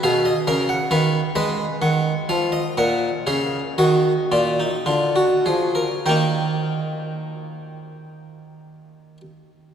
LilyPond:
<<
  \new Staff \with { instrumentName = "Harpsichord" } { \time 6/8 \key bes \phrygian \tempo 4. = 37 << { f''16 dis''16 f''16 fis''16 f''8 ees''8 ges''8 f''16 ees''16 | ges''8 f''8 ees''8 d''4. | <bes ees' g''>2. | } \\ { aes'8 bes'8 b'8 ces''4. | bes'8 aes'8 ges'8 f'16 ees'16 f'16 ges'16 aes'16 bes'16 | bes'2. | } >> }
  \new Staff \with { instrumentName = "Harpsichord" } { \clef bass \time 6/8 \key bes \phrygian b,8 des8 dis8 aes8 ees8 f8 | bes,8 des8 ees8 bes,8 d8 f8 | ees2. | }
>>